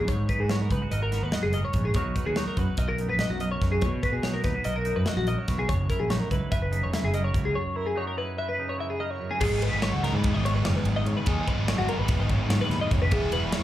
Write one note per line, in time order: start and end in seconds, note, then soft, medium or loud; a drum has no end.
0.00 0.49 B3 medium
0.00 0.10 A#4 medium
0.07 1.73 G#2 medium
0.07 0.27 G#2 medium
0.07 0.29 C#5 medium
0.07 kick medium
0.07 closed hi-hat medium
0.29 0.40 D#4 soft
0.29 0.40 B4 medium
0.29 kick medium
0.29 closed hi-hat medium
0.39 0.66 G#2 medium
0.39 0.70 F#4 soft
0.39 0.50 G#4 medium
0.49 1.92 G#3 medium
0.49 1.12 B3 soft
0.49 0.61 C#5 medium
0.49 snare loud
0.49 closed hi-hat medium
0.61 0.71 A#4 medium
0.70 0.79 C#2 medium
0.70 0.82 D#4 soft
0.70 0.91 B4 medium
0.70 kick medium
0.70 closed hi-hat medium
0.82 1.31 F#4 soft
0.91 1.18 G#1 medium
0.91 1.54 A#4 medium
0.91 1.02 D#5 medium
0.91 closed hi-hat medium
1.03 1.23 A#4 medium
1.11 1.92 D#3 medium
1.11 1.95 B3 medium
1.11 snare soft
1.11 closed hi-hat medium
1.22 1.32 D#2 medium
1.22 1.33 B4 medium
1.32 1.96 F#4 medium
1.32 1.44 D#5 medium
1.32 snare loud
1.32 closed hi-hat medium
1.43 1.62 F#1 medium
1.43 1.54 G#4 medium
1.53 1.97 A#4 medium
1.53 1.64 D#5 medium
1.53 closed hi-hat medium
1.65 1.85 C#5 medium
1.73 1.92 A#1 medium
1.73 1.93 G#2 medium
1.73 kick medium
1.73 closed hi-hat medium
1.85 1.95 G#4 medium
1.94 2.13 B1 loud
1.94 3.61 B2 medium
1.94 2.36 F#3 medium
1.94 2.16 D#4 medium
1.94 2.15 F#4 medium
1.94 2.78 A#4 medium
1.94 2.16 C#5 medium
1.94 kick loud
1.94 closed hi-hat medium
2.16 2.25 D#4 soft
2.16 2.26 B4 medium
2.16 kick medium
2.16 closed hi-hat medium
2.25 2.44 D#2 medium
2.25 2.57 F#4 soft
2.25 2.37 G#4 medium
2.36 4.25 F#3 medium
2.36 3.01 D#4 medium
2.36 2.47 C#5 medium
2.36 snare loud
2.36 closed hi-hat medium
2.48 2.58 A#4 medium
2.57 2.66 F#2 medium
2.57 3.20 F#4 medium
2.57 2.79 B4 medium
2.57 kick medium
2.57 closed hi-hat medium
2.77 3.10 B1 medium
2.77 3.40 A#4 medium
2.77 2.89 D#5 medium
2.77 kick medium
2.77 closed hi-hat medium
2.89 3.09 A#4 medium
2.98 3.62 F#2 medium
2.98 4.26 D#4 soft
2.98 closed hi-hat medium
3.10 3.18 A#1 medium
3.10 3.20 B4 medium
3.19 4.05 F#4 medium
3.19 3.30 D#5 medium
3.19 snare loud
3.19 closed hi-hat medium
3.30 3.57 B1 medium
3.30 3.41 F#4 medium
3.40 3.87 A#4 medium
3.40 3.51 D#5 medium
3.40 closed hi-hat medium
3.51 3.72 C#5 medium
3.61 3.83 F#2 medium
3.61 3.82 B2 medium
3.61 kick medium
3.61 snare soft
3.61 closed hi-hat medium
3.72 3.82 G#4 medium
3.81 4.00 B2 medium
3.81 4.87 B2 medium
3.81 4.03 C#5 medium
3.81 kick loud
3.81 closed hi-hat medium
4.03 4.44 F#4 medium
4.03 4.12 B4 medium
4.03 kick medium
4.03 closed hi-hat medium
4.12 4.39 B2 medium
4.12 4.23 G#4 medium
4.23 6.10 F#3 medium
4.23 4.45 D#4 medium
4.23 4.34 C#5 medium
4.23 snare medium
4.23 closed hi-hat medium
4.34 4.44 A#4 medium
4.44 4.53 D#2 medium
4.44 4.54 D#4 medium
4.44 4.65 B4 medium
4.44 kick medium
4.44 snare soft
4.44 closed hi-hat medium
4.54 5.06 F#4 soft
4.64 4.92 B1 medium
4.64 5.27 A#4 medium
4.64 4.75 D#5 medium
4.64 closed hi-hat medium
4.76 4.96 A#4 medium
4.84 5.47 F#2 medium
4.84 5.94 D#4 medium
4.84 closed hi-hat medium
4.96 5.05 F#2 medium
4.96 5.07 B4 medium
5.06 5.91 F#4 medium
5.06 5.17 D#5 medium
5.06 snare loud
5.06 closed hi-hat medium
5.16 5.35 A#1 medium
5.16 5.27 F#4 medium
5.27 5.94 A#4 medium
5.27 5.39 D#5 medium
5.27 closed hi-hat medium
5.39 5.59 C#5 medium
5.48 5.66 B1 medium
5.48 5.69 B2 medium
5.48 kick medium
5.48 snare soft
5.48 closed hi-hat medium
5.59 5.69 G#4 medium
5.69 5.87 F#1 loud
5.69 7.33 F#2 medium
5.69 5.89 C#5 medium
5.69 kick loud
5.69 closed hi-hat medium
5.90 6.31 E4 medium
5.90 6.00 A#4 medium
5.90 kick medium
5.90 closed hi-hat medium
6.00 6.18 A#1 medium
6.00 6.10 G#4 medium
6.10 7.94 F#3 medium
6.10 6.72 D#4 medium
6.10 6.20 C#5 medium
6.10 snare loud
6.10 closed hi-hat medium
6.20 6.31 A#4 medium
6.31 6.40 C#2 medium
6.31 6.92 E4 medium
6.31 6.51 B4 medium
6.31 kick medium
6.31 closed hi-hat medium
6.51 6.83 F#1 medium
6.51 7.14 B4 medium
6.51 6.62 E5 medium
6.51 kick loud
6.51 closed hi-hat medium
6.62 6.83 B4 medium
6.71 7.52 C#3 medium
6.71 7.79 D#4 medium
6.71 closed hi-hat medium
6.83 6.92 E1 medium
6.83 6.94 C#5 medium
6.93 7.53 E4 medium
6.93 7.04 E5 medium
6.93 snare loud
6.93 closed hi-hat medium
7.03 7.30 F#1 medium
7.03 7.14 G#4 medium
7.14 7.79 A#4 medium
7.14 7.24 D#5 medium
7.14 closed hi-hat medium
7.24 7.45 C#5 medium
7.34 7.52 C#2 medium
7.34 7.52 F#2 medium
7.34 kick medium
7.34 closed hi-hat medium
7.45 7.55 G#4 medium
7.53 9.19 F#2 medium
7.53 7.76 C#5 medium
7.76 8.16 E4 medium
7.76 7.87 A#4 medium
7.86 7.97 G#4 medium
7.95 11.26 F#3 medium
7.95 8.58 D#4 medium
7.95 8.07 C#5 medium
8.07 8.18 A#4 medium
8.17 8.77 E4 medium
8.17 8.38 B4 medium
8.38 9.00 B4 medium
8.38 8.49 E5 medium
8.49 8.69 B4 medium
8.58 9.39 C#3 medium
8.58 9.39 D#4 medium
8.69 8.79 C#5 medium
8.78 9.38 E4 medium
8.78 8.90 E5 medium
8.90 9.00 G#4 medium
9.00 9.39 A#4 medium
9.00 9.11 D#5 medium
9.11 9.31 C#5 medium
9.20 9.41 F#2 medium
9.31 9.40 G#4 medium
9.41 9.68 G#1 loud
9.41 11.25 G#2 medium
9.41 11.25 D#3 medium
9.41 11.27 G#3 loud
9.41 11.28 B3 medium
9.41 11.28 D#4 loud
9.41 9.62 G#4 medium
9.41 kick loud
9.41 crash loud
9.62 9.83 B4 medium
9.62 ride medium
9.73 9.90 G#1 medium
9.82 9.93 C#5 medium
9.82 snare loud
9.82 ride loud
9.93 10.14 C#2 medium
9.93 10.03 F#4 medium
10.04 10.14 A#4 medium
10.04 snare soft
10.04 ride medium
10.13 10.31 G#2 loud
10.13 10.34 B4 medium
10.24 kick loud
10.24 ride loud
10.34 10.61 G#1 medium
10.34 10.45 D#5 medium
10.45 10.55 C#5 medium
10.45 ride medium
10.56 10.66 B4 medium
10.65 10.74 F#1 medium
10.65 10.76 C#5 loud
10.65 snare loud
10.65 ride loud
10.76 10.96 B4 medium
10.85 11.03 G#1 loud
10.85 ride medium
10.96 11.07 D#5 medium
11.06 11.15 G#2 loud
11.06 11.16 C#5 medium
11.06 ride medium
11.17 11.27 B4 medium
11.26 11.44 D#2 loud
11.26 13.10 G#2 loud
11.26 13.11 D#3 medium
11.26 13.12 G#3 loud
11.26 13.12 B3 loud
11.26 13.12 D#4 loud
11.26 11.48 G#4 medium
11.26 kick loud
11.26 ride loud
11.47 11.68 B4 medium
11.47 kick medium
11.47 ride medium
11.57 11.75 G#1 medium
11.68 11.78 C#5 medium
11.68 snare loud
11.68 ride medium
11.78 11.87 G#1 medium
11.78 11.89 F#4 medium
11.88 11.99 A#4 medium
11.88 ride medium
11.99 12.17 G#1 medium
11.99 12.20 B4 medium
12.08 kick loud
12.08 ride loud
12.19 12.37 G#1 medium
12.19 12.30 D#5 medium
12.29 12.41 C#5 medium
12.29 kick medium
12.29 ride medium
12.41 12.50 B4 medium
12.49 12.58 G#2 loud
12.49 12.61 C#5 loud
12.49 snare loud
12.49 ride loud
12.61 12.81 B4 medium
12.69 12.79 D#2 loud
12.69 snare soft
12.69 ride medium
12.81 12.92 D#5 medium
12.91 13.09 F1 medium
12.91 13.02 C#5 medium
12.91 kick medium
12.91 ride medium
13.02 13.12 B4 medium
13.11 13.39 E1 loud
13.11 13.63 E3 medium
13.11 13.63 G#3 loud
13.11 13.63 B3 loud
13.11 13.63 E4 loud
13.11 13.33 G#4 medium
13.11 kick loud
13.11 ride loud
13.32 13.53 B4 medium
13.32 ride loud
13.43 13.61 E1 medium
13.52 13.63 C#5 medium
13.52 snare loud
13.52 ride loud